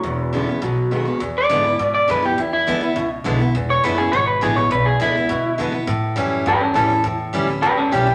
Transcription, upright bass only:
\new Staff \with { instrumentName = "Upright bass" } { \clef bass \time 4/4 \key e \mixolydian \tempo 4 = 206 e,,2 b,,2 | e,4 gis,4 gis,4 fis,4 | e,4 d,4 cis,4 b,,4 | e,,4 fis,,4 gis,,4 a,,4 |
b,,4 r4 d,4 e,8 r8 | a,4 fis,4 g,4 a,4 | e,4 d,4 cis,4 b,,4 | }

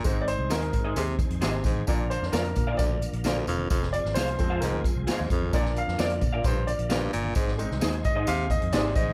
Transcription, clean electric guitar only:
\new Staff \with { instrumentName = "Clean electric guitar" } { \time 4/4 \key bes \mixolydian \tempo 4 = 131 r4 <ees' aes' c'' ees''>16 r8 <ees' aes' c'' ees''>16 r4 <ees' aes' c'' ees''>16 r8. | r4 <f' bes' d'' f''>16 r8 <f' bes' d'' f''>16 r4 <f' bes' d'' f''>16 r8. | r4 <f' aes' c'' f''>16 r8 <f' aes' c'' f''>16 r4 <f' aes' c'' f''>16 r8. | r4 <f' bes' d'' f''>16 r8 <f' bes' d'' f''>16 r4 <f' bes' d'' f''>16 r8. |
r4 <ees' aes' c'' ees''>16 r8 <ees' aes' c'' ees''>16 r4 <ees' aes' c'' ees''>16 r8. | }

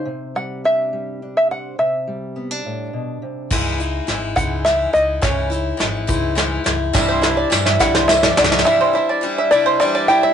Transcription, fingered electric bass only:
\new Staff \with { instrumentName = "Fingered electric bass" } { \clef bass \time 6/8 \key cis \minor \tempo 4. = 70 r2. | r2. | cis,4 gis,,8 cis,4 cis,8 | cis,4 gis,,8 cis,4 cis,8 |
c,4 g,8 c,4 c,8 | r2. | }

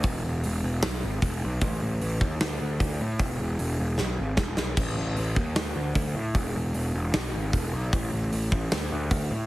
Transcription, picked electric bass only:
\new Staff \with { instrumentName = "Picked electric bass" } { \clef bass \time 4/4 \key e \major \tempo 4 = 152 e,,8 e,,8 e,,8 e,,8 b,,8 gis,,8 e,,8 b,,8 | a,,8 a,,8 a,,8 dis,8 d,8 d,8 d,8 a,8 | e,,8 e,,8 e,,8 e,,8 b,,8 gis,,8 e,,8 b,,8 | a,,8 a,,8 a,,8 dis,8 d,8 d,8 d,8 a,8 |
e,,8 e,,8 e,,8 e,,8 b,,8 gis,,8 e,,8 b,,8 | a,,8 a,,8 a,,8 a,,8 d,8 d,8 d,8 a,8 | }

